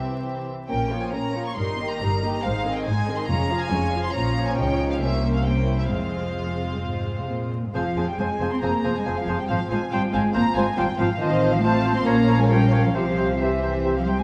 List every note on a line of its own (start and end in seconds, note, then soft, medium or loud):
0.00 0.48 C2 soft
0.00 0.48 C3 soft
0.00 0.46 E3 soft
0.00 0.46 C4 soft
0.00 0.46 G4 soft
0.00 0.46 E5 soft
0.68 1.06 A#1 medium
0.68 1.06 A#2 medium
0.68 0.90 A#3 soft
0.68 0.89 C#4 soft
0.68 0.90 C#4 soft
0.68 0.89 A#4 soft
0.68 1.00 G5 medium
0.91 1.13 F3 soft
0.91 1.11 A#3 soft
0.91 1.13 F4 soft
0.91 1.13 C#5 soft
1.03 1.14 G#5 soft
1.12 1.50 A#1 soft
1.12 1.50 A#2 medium
1.12 1.34 A#3 soft
1.12 1.35 C#4 soft
1.12 1.35 A#4 soft
1.12 1.45 A#5 medium
1.35 1.57 F3 soft
1.35 1.57 A#3 soft
1.35 1.57 F4 soft
1.35 1.57 C#5 soft
1.47 1.57 C#6 medium
1.57 1.94 G1 medium
1.57 1.94 G2 soft
1.57 1.77 G3 soft
1.57 1.77 D#4 soft
1.57 1.77 A#4 soft
1.57 1.89 C6 medium
1.79 2.01 D#3 soft
1.79 2.01 A#3 soft
1.79 2.01 G4 soft
1.79 2.01 D#5 soft
1.89 2.32 A#5 medium
2.01 2.38 G1 medium
2.01 2.38 G2 medium
2.01 2.23 G3 soft
2.01 2.23 D#4 soft
2.01 2.23 A#4 soft
2.23 2.45 D#3 soft
2.23 2.45 A#3 soft
2.23 2.45 G4 soft
2.23 2.45 D#5 soft
2.34 2.44 A#5 medium
2.43 2.80 G#1 medium
2.43 2.80 G#2 medium
2.43 2.65 G#3 soft
2.43 2.65 D#4 soft
2.43 2.65 C5 soft
2.43 2.76 F5 medium
2.66 2.88 D#3 soft
2.66 2.88 C4 soft
2.66 2.88 G#4 medium
2.66 2.88 D#5 soft
2.76 2.87 G5 medium
2.86 3.23 G#1 medium
2.86 3.23 G#2 medium
2.86 3.10 G#3 soft
2.86 3.09 D#4 soft
2.86 3.09 C5 soft
2.86 3.18 G#5 medium
3.09 3.30 D#3 soft
3.09 3.30 C4 soft
3.09 3.31 G#4 soft
3.09 3.31 D#5 soft
3.18 3.30 C6 medium
3.29 3.65 F1 medium
3.29 3.66 F2 medium
3.29 3.50 G#3 medium
3.29 3.50 C#4 medium
3.29 3.50 F4 soft
3.29 3.50 C#5 soft
3.29 3.61 A#5 medium
3.51 3.72 F3 soft
3.51 3.73 F4 soft
3.51 3.73 G#4 soft
3.51 3.73 F5 soft
3.60 4.04 G#5 medium
3.72 4.09 F1 medium
3.72 4.08 F2 medium
3.72 3.94 G#3 soft
3.72 3.94 C#4 soft
3.72 3.94 F4 soft
3.72 3.94 C#5 medium
3.94 4.14 F3 soft
3.94 4.16 F4 soft
3.94 4.16 G#4 soft
3.94 4.16 F5 soft
4.05 4.15 C6 medium
4.15 4.56 A#1 medium
4.15 4.55 A#2 medium
4.15 4.98 F3 medium
4.15 4.98 C#4 medium
4.15 4.56 F4 medium
4.15 4.98 C#5 medium
4.15 4.47 A#5 medium
4.49 4.59 G#5 medium
4.58 5.02 C#2 medium
4.58 5.02 C#3 medium
4.58 5.02 D#4 soft
4.58 4.90 G5 medium
4.91 4.95 F5 medium
5.00 5.91 C2 medium
5.00 5.91 C3 medium
5.00 5.44 A#3 medium
5.00 5.45 C#4 soft
5.00 5.44 C5 medium
5.00 5.33 E5 medium
5.35 5.46 F5 medium
5.44 5.90 A#3 soft
5.44 5.90 C#4 soft
5.44 5.68 C#4 soft
5.44 5.89 C5 soft
5.44 5.79 G5 medium
5.67 5.90 E4 soft
5.79 5.91 E5 medium
5.90 7.54 F1 soft
5.90 6.33 F2 soft
5.90 7.51 G#3 soft
5.90 7.51 C4 soft
5.90 7.54 F4 soft
5.90 7.51 C5 soft
5.90 7.26 F5 medium
6.37 6.69 F2 soft
6.72 6.76 G2 soft
6.83 7.17 G#2 soft
7.18 7.30 C3 soft
7.29 7.63 A#2 soft
7.64 7.75 G#2 soft
7.74 7.83 F1 soft
7.74 7.84 F3 soft
7.74 8.05 F3 medium
7.74 7.82 C4 soft
7.74 11.17 C4 soft
7.74 7.84 G#4 soft
7.74 9.46 G#4 soft
7.74 7.82 C5 soft
7.74 7.85 C5 soft
7.74 8.05 F5 soft
7.74 7.83 G#5 soft
7.97 8.05 F1 soft
7.97 8.07 F3 soft
7.97 8.05 C4 soft
7.97 8.07 G#4 soft
7.97 8.07 C5 soft
7.97 8.05 C5 soft
7.97 8.05 G#5 soft
8.08 8.19 G3 medium
8.08 8.20 G5 soft
8.08 8.19 G5 soft
8.18 8.27 F1 soft
8.18 8.29 F3 soft
8.18 8.52 G#3 medium
8.18 8.27 C4 soft
8.18 8.29 G#4 soft
8.18 8.26 C5 soft
8.18 8.29 C5 soft
8.18 8.51 G#5 soft
8.18 8.27 G#5 soft
8.18 8.53 G#5 medium
8.40 8.49 F1 soft
8.40 8.51 F3 soft
8.40 8.49 C4 soft
8.40 8.51 G#4 soft
8.40 8.50 C5 soft
8.40 8.48 C5 soft
8.40 8.49 G#5 soft
8.51 8.63 C4 medium
8.51 8.61 C6 soft
8.51 8.63 C6 soft
8.62 8.71 F1 soft
8.62 8.72 F3 soft
8.62 8.95 A#3 medium
8.62 8.71 C4 soft
8.62 8.73 G#4 soft
8.62 8.72 C5 soft
8.62 8.71 C5 soft
8.62 8.70 G#5 soft
8.62 8.94 A#5 medium
8.62 8.95 A#5 medium
8.84 8.93 F1 soft
8.84 8.94 F3 soft
8.84 8.93 C4 soft
8.84 8.94 G#4 soft
8.84 8.94 C5 soft
8.84 8.93 C5 soft
8.84 8.92 G#5 soft
8.95 9.04 G#3 medium
8.95 9.01 G#5 medium
8.95 9.18 G#5 soft
9.05 9.15 F1 soft
9.05 9.16 F3 soft
9.05 9.15 C4 soft
9.05 9.16 G#4 soft
9.05 9.16 C5 soft
9.05 9.15 C5 soft
9.05 9.13 G#5 soft
9.17 9.39 F3 medium
9.17 9.23 F5 soft
9.17 9.39 F5 soft
9.27 9.36 F1 soft
9.27 9.38 F3 soft
9.27 9.36 C4 soft
9.27 9.38 G#4 soft
9.27 9.36 C5 soft
9.27 9.38 C5 soft
9.27 9.35 G#5 soft
9.39 9.50 G3 medium
9.39 9.50 G5 soft
9.39 9.48 G5 soft
9.48 9.58 G#1 medium
9.48 9.58 F3 medium
9.48 9.60 F3 soft
9.48 9.58 C4 soft
9.48 9.59 F4 soft
9.48 12.91 F4 medium
9.48 9.58 C5 soft
9.48 9.60 C5 soft
9.48 9.56 F5 soft
9.48 9.54 F5 medium
9.48 9.71 F5 medium
9.69 9.79 G#1 soft
9.69 9.81 F3 soft
9.69 9.79 G#3 medium
9.69 9.79 C4 soft
9.69 9.81 F4 soft
9.69 9.79 C5 soft
9.69 9.82 C5 soft
9.69 9.78 F5 soft
9.69 9.93 G#5 medium
9.69 9.92 G#5 medium
9.91 10.00 G#1 medium
9.91 10.02 F3 soft
9.91 10.13 G3 medium
9.91 10.01 C4 soft
9.91 10.02 F4 soft
9.91 10.01 C5 soft
9.91 10.03 C5 soft
9.91 9.99 F5 soft
9.91 10.15 G5 medium
9.91 10.01 G5 medium
10.13 10.22 G#1 medium
10.13 10.23 F3 soft
10.13 10.34 G#3 medium
10.13 10.21 C4 soft
10.13 10.23 F4 soft
10.13 10.21 C5 soft
10.13 10.23 C5 soft
10.13 10.21 F5 soft
10.13 10.21 G#5 medium
10.13 10.34 G#5 medium
10.33 10.43 G#1 medium
10.33 10.45 F3 medium
10.33 10.43 A#3 medium
10.33 10.42 C4 medium
10.33 10.45 F4 medium
10.33 10.42 C5 medium
10.33 10.45 C5 medium
10.33 10.41 F5 medium
10.33 10.56 A#5 medium
10.54 10.64 G#1 medium
10.54 10.67 F3 medium
10.54 10.64 G#3 medium
10.54 10.64 C4 medium
10.54 10.66 F4 soft
10.54 10.64 C5 soft
10.54 10.66 C5 soft
10.54 10.62 F5 medium
10.54 10.78 G#5 medium
10.54 10.63 G#5 medium
10.77 10.86 G#1 medium
10.77 10.88 F3 soft
10.77 10.85 G3 medium
10.77 10.85 C4 medium
10.77 10.88 F4 medium
10.77 10.85 C5 soft
10.77 10.88 C5 medium
10.77 10.85 F5 medium
10.77 11.00 G5 medium
10.77 10.84 G5 medium
10.98 11.08 G#1 medium
10.98 11.08 F3 medium
10.98 11.10 F3 soft
10.98 11.08 C4 medium
10.98 11.10 F4 medium
10.98 11.07 C5 medium
10.98 11.09 C5 medium
10.98 11.06 F5 soft
10.98 11.21 F5 medium
10.98 11.06 F5 medium
11.20 12.02 A1 medium
11.20 11.53 D#3 medium
11.20 11.31 F3 medium
11.20 11.61 C4 medium
11.20 12.05 C4 medium
11.20 11.31 F4 medium
11.20 11.61 C5 medium
11.20 11.31 C5 medium
11.20 11.53 D#5 medium
11.20 11.56 D#5 medium
11.20 11.60 F5 medium
11.42 11.52 F3 medium
11.42 11.52 F4 medium
11.42 11.52 C5 soft
11.53 11.64 F3 medium
11.53 11.64 F5 medium
11.53 11.66 F5 medium
11.63 11.74 F3 medium
11.63 11.95 A3 medium
11.63 12.05 C4 medium
11.63 11.73 F4 medium
11.63 12.06 C5 medium
11.63 11.73 C5 medium
11.63 12.05 F5 medium
11.63 11.95 A5 medium
11.63 11.96 A5 medium
11.85 11.95 F3 medium
11.85 11.95 F4 soft
11.85 11.95 C5 medium
11.95 12.06 C4 medium
11.95 12.06 C6 medium
11.95 12.01 C6 medium
12.06 12.95 A#1 medium
12.06 12.16 F3 medium
12.06 12.39 A#3 medium
12.06 12.95 C#4 medium
12.06 12.17 F4 medium
12.06 12.95 A#4 medium
12.06 12.17 C#5 medium
12.06 12.93 F5 medium
12.06 12.39 A#5 medium
12.06 12.38 A#5 medium
12.28 12.38 F3 soft
12.28 12.38 F4 soft
12.28 12.38 C#5 soft
12.39 12.50 G#3 medium
12.39 12.50 G#5 medium
12.39 12.44 G#5 medium
12.49 12.60 F3 soft
12.49 12.84 G3 medium
12.49 12.60 F4 soft
12.49 12.60 C#5 soft
12.49 12.83 G5 medium
12.71 12.82 F3 soft
12.71 12.83 F4 soft
12.71 12.82 C#5 soft
12.84 12.94 F3 medium
12.84 12.93 F5 soft
12.84 12.89 F5 soft
12.94 14.23 C2 medium
12.94 13.05 C3 soft
12.94 13.40 F3 medium
12.94 13.39 C4 soft
12.94 14.23 C4 medium
12.94 13.39 G4 soft
12.94 14.23 G4 medium
12.94 13.06 G4 soft
12.94 13.05 C5 soft
12.94 13.39 C5 soft
12.94 13.39 F5 medium
12.94 13.42 F5 medium
13.17 13.28 C3 soft
13.17 13.29 G4 soft
13.17 13.28 C5 soft
13.40 13.50 C3 soft
13.40 13.96 E3 medium
13.40 14.23 C4 soft
13.40 14.23 G4 soft
13.40 13.52 G4 soft
13.40 14.23 C5 soft
13.40 13.51 C5 soft
13.40 13.96 E5 soft
13.40 13.72 E5 soft
13.62 13.73 C3 soft
13.62 13.73 G4 soft
13.62 13.73 C5 soft
13.85 13.95 C3 soft
13.85 13.96 G4 soft
13.85 13.95 C5 soft
13.96 14.08 F3 soft
13.96 14.07 F5 soft
13.96 14.02 F5 soft
14.07 14.18 C3 soft
14.07 14.19 G3 medium
14.07 14.18 G4 soft
14.07 14.17 C5 soft
14.07 14.20 G5 soft
14.07 14.19 G5 soft
14.19 14.23 G#3 medium
14.19 14.23 G#5 soft